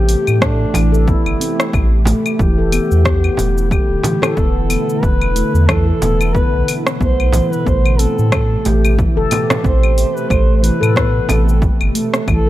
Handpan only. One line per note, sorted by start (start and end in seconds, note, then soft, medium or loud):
0.41 0.59 A3 medium
0.74 0.92 E3 medium
0.92 1.06 A4 medium
1.07 1.18 B3 medium
1.40 1.58 C4 medium
2.06 2.24 A3 medium
2.40 2.57 E3 medium
2.58 2.72 A4 medium
2.72 2.83 B3 medium
3.05 3.23 B3 medium
3.71 3.89 A3 medium
4.04 4.22 E3 medium
4.23 4.36 A4 medium
4.37 4.47 B3 medium
4.70 4.88 B3 medium
5.35 5.53 A3 medium
5.68 5.86 E3 medium
5.88 6.01 A4 medium
6.02 6.12 B3 medium
6.34 6.52 B3 medium
7.01 7.18 B3 loud
7.19 7.33 A3 medium
7.33 7.51 E3 medium
7.52 7.65 A3 medium
7.66 7.77 B3 medium
7.99 8.17 C4 medium
8.65 8.83 A3 medium
8.98 9.16 E3 medium
9.17 9.30 A4 loud
9.31 9.42 B3 medium
9.64 9.82 C4 medium
10.30 10.48 A3 medium
10.63 10.81 E3 medium
10.81 10.94 A4 loud
10.95 11.07 B3 medium
11.29 11.47 C4 medium
11.95 12.13 A3 medium
12.28 12.46 E3 medium